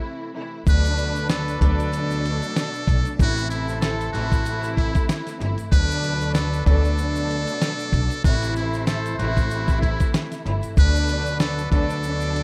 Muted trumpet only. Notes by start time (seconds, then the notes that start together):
0.69 B4
1.30 A4
1.62 A4
3.23 F#4
3.50 E4
3.81 A4
4.13 F#4
4.78 E4
5.72 B4
6.34 A4
6.67 A4
8.25 F#4
8.57 E4
8.87 A4
9.19 F#4
9.81 E4
10.79 B4
11.40 A4
11.72 A4